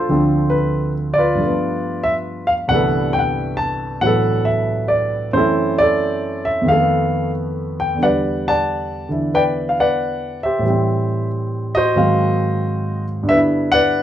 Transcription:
Already playing: F4 A4 C5
0.09 D2 D3 F3 C4
0.50 B4
1.14 D5
1.18 F4 B4
1.35 G2 F3
1.42 A3 B3
2.03 E5
2.47 F5
2.68 C2 G2 D3 E3 A3 F#5
2.73 B3 A4 B4
3.13 G5
3.19 F#5
3.57 A5
4.01 A2 E3 F#3 B3 F#5
4.06 A4 B4
4.45 E5
4.88 D5
5.33 F#2 E3 A3 E4 C5
5.37 C4 A4
5.78 A4 D5
6.45 E5
6.62 F2 D#3
6.68 A3 A4 B4 F5
6.72 B3
7.80 G5
7.95 E2 D3
8.02 G3 B4 D5 F#5
8.48 D5 F#5 A5
9.09 D3 E3 E4
9.34 B4 D5 G5
9.69 F5
9.80 B4 D5 F#5
10.43 G4 C5 E5
10.59 A2 E3
10.66 G3 C4
11.75 F#4 C5 D#5
11.96 G#2 D#3 F#3 A#3 C4 F5
13.23 G2 D3
13.29 B3 B4 E5
13.34 E4
13.72 B4 D5 F#5

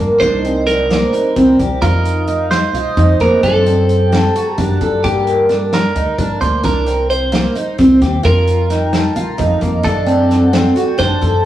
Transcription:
0.00 G2 A#3
0.20 C2 D4 C5, kick, closed hi-hat
0.45 C4, closed hi-hat
0.67 A#4, snare, closed hi-hat
0.90 A#3, snare, closed hi-hat
1.13 D#4, closed hi-hat
1.36 C2 C4, kick, closed hi-hat
1.59 C2 G4, kick, closed hi-hat
1.82 F2 F4 A#4, kick, closed hi-hat
2.05 closed hi-hat
2.27 D#4, closed hi-hat
2.51 C5, snare, closed hi-hat
2.73 C2 F4, closed hi-hat
2.97 F2 D#4, kick, closed hi-hat
3.20 F2 A#3 A#4, kick, snare, closed hi-hat
3.43 F#2 D4 A4, kick, closed hi-hat
3.66 C4, closed hi-hat
3.89 closed hi-hat
4.12 C4, snare, closed hi-hat
4.36 F#4, closed hi-hat
4.53 G4
4.58 F#2 D4, kick, closed hi-hat
4.81 F#2 A4, kick, closed hi-hat
5.04 G2 G4, kick, closed hi-hat
5.27 closed hi-hat
5.49 D4, snare, closed hi-hat
5.73 A#4, snare, closed hi-hat
5.95 D2 D#4, closed hi-hat
6.18 G2 D4, kick, closed hi-hat
6.41 D2 A#3 C5, kick, closed hi-hat
6.63 C2 D4 A#4, kick, closed hi-hat
6.86 C4, closed hi-hat
7.10 C5, closed hi-hat
7.32 A#3, snare, closed hi-hat
7.55 D#4, closed hi-hat
7.78 C2 C4, kick, closed hi-hat
8.02 D#2 G4, kick, snare, closed hi-hat
8.23 F2 F4 A#4, kick, closed hi-hat
8.47 closed hi-hat
8.70 D#4, snare, closed hi-hat
8.93 snare, closed hi-hat
9.16 C2 F4, closed hi-hat
9.38 F2 D#4, kick, closed hi-hat
9.61 F2 A#3, kick, closed hi-hat
9.83 F#2 D4 A4, kick, closed hi-hat
10.06 C4, closed hi-hat
10.31 snare, closed hi-hat
10.53 C4, snare, closed hi-hat
10.76 F#4, closed hi-hat
10.98 F#2 D4 C5, kick, snare, closed hi-hat
11.21 F#2 A4, kick, closed hi-hat

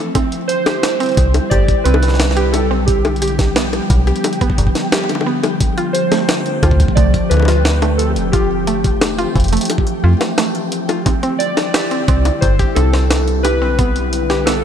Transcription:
Already playing: E3 F3 A3 C4 E4 E5
0.00 A4
0.15 D3 G3 C4 E4 G4 G5, kick, closed hi-hat, high bongo
0.32 closed hi-hat
0.48 C5, closed hi-hat
0.66 G4, snare, closed hi-hat, high bongo
0.83 snare, closed hi-hat
1.00 C4, closed hi-hat
1.03 closed hi-hat
1.06 closed hi-hat
1.09 closed hi-hat
1.12 closed hi-hat
1.14 closed hi-hat
1.17 C2, kick, closed hi-hat
1.34 closed hi-hat, high bongo
1.50 G1 G4 D5, kick, closed hi-hat
1.68 kick, closed hi-hat
1.84 C2 C4 B4, closed hi-hat
1.94 high bongo
2.03 snare, closed hi-hat
2.08 snare
2.14 snare
2.20 snare, closed hi-hat
2.25 snare
2.31 snare
2.37 G4, closed hi-hat
2.52 A4, closed hi-hat, high bongo
2.71 B1 C4
2.86 F3 B3 G4, kick, closed hi-hat
3.05 closed hi-hat, high bongo
3.16 closed hi-hat
3.22 G4, closed hi-hat
3.28 closed hi-hat
3.39 kick, snare, closed hi-hat
3.56 B3, snare, closed hi-hat
3.73 closed hi-hat, high bongo
3.90 B1, kick, closed hi-hat
4.07 G4, closed hi-hat
4.16 closed hi-hat
4.24 closed hi-hat, high bongo
4.33 closed hi-hat
4.41 B3, kick, closed hi-hat
4.50 kick
4.58 G1, kick, closed hi-hat
4.67 kick
4.75 snare, closed hi-hat
4.92 G4, snare, closed hi-hat, high bongo
4.98 high bongo
5.04 high bongo
5.09 closed hi-hat, high bongo
5.15 high bongo
5.21 high bongo
5.26 B3
5.43 closed hi-hat, high bongo
5.61 A3 C4, kick, closed hi-hat
5.78 F4, closed hi-hat
5.93 C5, closed hi-hat
6.12 A3, snare, closed hi-hat, high bongo
6.29 snare, closed hi-hat
6.46 closed hi-hat
6.63 D2 F4, kick, closed hi-hat, high bongo
6.71 kick
6.80 kick, closed hi-hat
6.88 kick
6.95 C2 A3 D5, kick, closed hi-hat
7.14 kick, closed hi-hat
7.29 D2 B4, closed hi-hat, high bongo
7.34 high bongo
7.37 high bongo
7.40 high bongo
7.42 high bongo
7.45 F4, snare, closed hi-hat, high bongo
7.65 snare
7.82 A3, closed hi-hat, high bongo
7.98 A4, closed hi-hat
8.16 F1, closed hi-hat
8.32 E3 F4 G4, kick, closed hi-hat
8.67 A3, closed hi-hat
8.84 kick, closed hi-hat
9.01 snare, closed hi-hat, high bongo
9.19 F4, closed hi-hat
9.36 F1, kick, closed hi-hat
9.40 closed hi-hat
9.44 closed hi-hat
9.48 closed hi-hat
9.53 A3, closed hi-hat
9.57 closed hi-hat
9.61 closed hi-hat
9.65 closed hi-hat
9.70 closed hi-hat, high bongo
9.78 kick
9.87 closed hi-hat
10.04 F2 F4
10.21 snare, closed hi-hat, high bongo
10.38 A3, snare, closed hi-hat
10.55 closed hi-hat
10.72 closed hi-hat
10.89 F4, closed hi-hat, high bongo
11.06 D3 G3 C4 E4, kick, closed hi-hat, high bongo
11.23 C4, closed hi-hat
11.39 D5, closed hi-hat
11.57 snare, closed hi-hat, high bongo
11.74 G4, snare, closed hi-hat
11.91 C4, closed hi-hat
12.08 C2 C4, kick, closed hi-hat
12.25 closed hi-hat, high bongo
12.41 G1 C5, kick, closed hi-hat
12.59 G4, kick, closed hi-hat
12.75 C2 C4 A4, closed hi-hat, high bongo
12.93 C4, snare
13.11 snare, closed hi-hat
13.28 closed hi-hat
13.43 G4 B4, closed hi-hat, high bongo
13.62 B1 C4
13.79 B3 F4, kick, closed hi-hat
13.96 closed hi-hat
14.13 closed hi-hat
14.30 G4, snare
14.45 B3 A4, snare, closed hi-hat

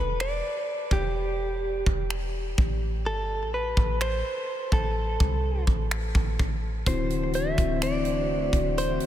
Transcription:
Already playing: E1 B4
0.20 D5, finger snap
0.91 E1 G4, kick
1.86 E1, kick
2.10 finger snap
2.58 A1, kick
3.06 G1 A4
3.42 A1
3.54 B4
3.77 A1, kick
4.01 C5, finger snap
4.72 A1 A4, kick
5.20 C2, kick
5.67 A1, kick
5.91 finger snap
6.15 A1, kick
6.39 kick
6.86 D1 D3 E3 A3 C4 D4 E4 F#4 C5, kick, closed hi-hat
7.10 closed hi-hat
7.34 E5, closed hi-hat
7.58 D1 D3 C4 E4 F#4, kick, closed hi-hat
7.82 D5, finger snap, closed hi-hat
8.05 closed hi-hat
8.53 D1, kick, closed hi-hat
8.77 E4 C5, closed hi-hat
9.00 closed hi-hat

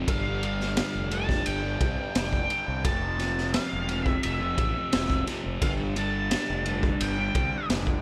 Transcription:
0.08 G1 G2 D3 G3 F5, kick, ride
0.26 D3 G3
0.43 G2 D3 G3 F5, ride
0.60 snare
0.77 G2 D3 G3, snare, ride
0.95 F1
1.11 G2 D3 G3 A5, ride
1.29 D3 G3, kick, snare
1.46 G1 G5, ride
1.63 D3 G3
1.80 C2 G2 D3 G3, kick, ride
1.97 D3 G3
2.15 F1 G2 D3 G3 G5, snare, ride
2.33 kick
2.49 G2 D3 G3, ride
2.66 C2 D3 G3
2.84 F1 F2 C3 F3 A5, kick, ride
3.01 C3 F3
3.18 F2 C3 F3, snare, ride
3.38 snare
3.53 F2 C3 F3 F5, snare, ride
3.73 E1
3.87 F2 C3 F3, ride
4.05 C3 F3 E5, kick
4.23 F1 E5, ride
4.40 C3 F3
4.57 A1 F2 C3 F3, kick, ride
4.75 C3 F3
4.91 E1 F2 C3 F3, snare, ride
5.10 kick
5.26 F2 C3 F3, snare, ride
5.44 F1 C3 F3
5.61 G1 G2 D3 G3 F5, kick, ride
5.78 D3 G3
5.96 G2 D3 G3 A5, ride
6.31 G2 D3 G3, snare, ride
6.50 F1
6.66 G2 D3 G3, ride
6.83 D3 G3, kick
7.00 G1 G5, ride
7.17 D3 G3
7.34 C2 G2 D3 G3, kick, ride
7.51 D3 G3
7.68 F1 G2 D3 G3, snare, ride
7.87 kick

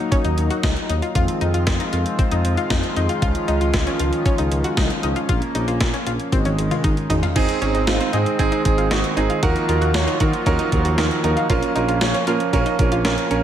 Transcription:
Already playing: F#3 A#3 D#4
0.12 C#4, kick, closed hi-hat
0.24 D#2 D#4, closed hi-hat
0.38 D#2, closed hi-hat
0.50 F#4, closed hi-hat
0.63 C#2 D#4, kick, snare, closed hi-hat
0.77 closed hi-hat
0.89 D#2 D#4, closed hi-hat
1.02 F4, closed hi-hat
1.15 F2 D#3 F3 G#3 C4 F4, kick, closed hi-hat
1.28 closed hi-hat
1.41 F2 D#4, closed hi-hat
1.54 F2 F4, closed hi-hat
1.67 F2, kick, snare, closed hi-hat
1.80 D#4, closed hi-hat
1.93 F2 F4, closed hi-hat
2.06 closed hi-hat
2.19 C4, kick, closed hi-hat
2.31 F2 D#4, closed hi-hat
2.45 F2, closed hi-hat
2.57 F4, closed hi-hat
2.70 F2 D#4, kick, snare, closed hi-hat
2.83 closed hi-hat
2.96 F2 D#4, closed hi-hat
3.09 F4, closed hi-hat
3.22 C#2 C#4 F4, kick, closed hi-hat
3.35 closed hi-hat
3.48 C#2 D#4, closed hi-hat
3.61 C#2 F4, closed hi-hat
3.73 C#2, kick, snare, closed hi-hat
3.87 C#4, closed hi-hat
3.99 C#2 F4, closed hi-hat
4.13 closed hi-hat
4.26 C#4, kick, closed hi-hat
4.38 C#2 D#4, closed hi-hat
4.52 C#2, closed hi-hat
4.64 F#4, closed hi-hat
4.77 C2 D#4, kick, snare, closed hi-hat
4.90 closed hi-hat
5.03 C#2 D#4, closed hi-hat
5.16 F4, closed hi-hat
5.29 A#1 A#3 F4, kick, closed hi-hat
5.42 closed hi-hat
5.55 A#1 D#4, closed hi-hat
5.68 A#1 F4, closed hi-hat
5.80 A#1, kick, snare, closed hi-hat
5.94 C#4, closed hi-hat
6.07 A#1 F4, closed hi-hat
6.20 closed hi-hat
6.32 G#1 D#3 G#3 C4, kick, closed hi-hat, high tom
6.45 G#1 C#4, closed hi-hat, high tom
6.58 G#1, closed hi-hat
6.71 F4, closed hi-hat, mid tom
6.84 G#1 D#4, kick, closed hi-hat, mid tom
6.97 closed hi-hat
7.10 G#1 D#4, closed hi-hat, floor tom
7.23 F4, closed hi-hat, floor tom
7.36 G#1 D#3 G#3 C4 D#4 G#4, kick, closed hi-hat, crash
7.49 closed hi-hat
7.62 G#1 C4 C#4 D#4 G#4, closed hi-hat
7.74 G#1 D#4, closed hi-hat
7.87 G#1 C4 D#4 F4, snare, closed hi-hat
8.00 C4, closed hi-hat
8.13 G#2 C4 D#4 G#4, closed hi-hat
8.26 closed hi-hat
8.39 G#1 C4 D#4 G#4, kick, closed hi-hat
8.52 D#4, closed hi-hat
8.65 G#1 C4 D#4 G#4, kick, closed hi-hat
8.78 G#1 F4, closed hi-hat
8.91 G#1 C4 D#4 F#4, snare, closed hi-hat
9.04 closed hi-hat
9.17 G#1 C4 D#4 G#4, closed hi-hat
9.30 F4, closed hi-hat
9.43 D#2 F3 F#3 A#3 D#4 F4 F#4 A#4, kick, closed hi-hat
9.56 closed hi-hat
9.68 D#2 D#4 F4 F#4 A#4, closed hi-hat
9.81 D#2 F#4, closed hi-hat
9.94 D#2 D#4 F#4 C#5, snare, closed hi-hat
10.07 D#4, closed hi-hat
10.20 D#3 D#4 F#4 A#4, kick, closed hi-hat
10.33 closed hi-hat
10.46 D#2 C#4 D#4 F#4 A#4, kick, closed hi-hat
10.59 D#4, closed hi-hat
10.72 D#2 D#4 F#4 A#4, kick, closed hi-hat
10.85 D#2 F#4, closed hi-hat
10.98 D#2 D#4 F#4 A#4, snare, closed hi-hat
11.11 closed hi-hat
11.24 D#2 D#4 F#4 A#4, closed hi-hat
11.37 F4, closed hi-hat
11.50 A#1 C#4 F4 A#4, kick, closed hi-hat
11.63 closed hi-hat
11.75 A#1 C#4 D#4 F4 A#4, closed hi-hat
11.88 A#1 F4, closed hi-hat
12.01 A#1 C#4 F4 C#5, snare, closed hi-hat
12.14 C#4, closed hi-hat
12.27 A#2 C#4 F4 A#4, closed hi-hat
12.40 closed hi-hat
12.53 A#1 C#4 F4 A#4, kick, closed hi-hat
12.66 D#4, closed hi-hat
12.79 A#1 C#4 F4 A#4, kick, closed hi-hat
12.92 A#1 F4, closed hi-hat
13.05 A#1 C#4 F4 A#4, snare, closed hi-hat
13.18 closed hi-hat
13.31 A#1 C#4 F4 A#4, closed hi-hat

